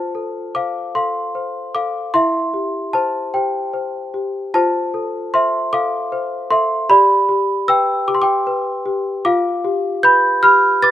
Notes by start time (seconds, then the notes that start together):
Already playing: F4 C5 A5
0.15 A4
0.55 C5 F5 D6
0.95 A4 F5 C6
1.35 C5
1.75 A4 F5 D6
2.14 E4 E5 C6
2.54 G4
2.93 C5 A5
3.34 G4 C5 G5
3.73 C5
4.14 G4
4.54 F4 C5 A5
4.94 A4
5.34 C5 E5 C6
5.73 A4 F5 D6
6.12 C5
6.51 A4 E5 C6
6.89 G4 D5 B5
7.29 G4
7.68 B4 G5 E6
8.07 G4 D6
8.15 C6
8.22 G5 D6
8.47 B4
8.86 G4
9.25 F4 F5 D6
9.64 G4
10.03 B4 B5 G6
10.43 G4 B5 F6
10.82 B4 D6 A6